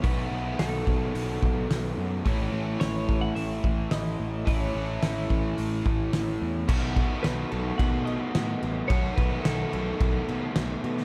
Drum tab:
CC |----------------|----------------|----------------|x-x-x-x-x-x-x-x-|
HH |o---o---o---o---|o---o---o---o---|o---o---o---o---|----------------|
SD |----o-------o---|----o-------o---|----o-------o---|----o-------o---|
BD |o-----o---o-----|o-----o---o-----|o-----o---o-----|o-o-----o-------|

CC |x-x-x-x-x-x-x-x-|
HH |----------------|
SD |----o-------o--o|
BD |o-o-----o-------|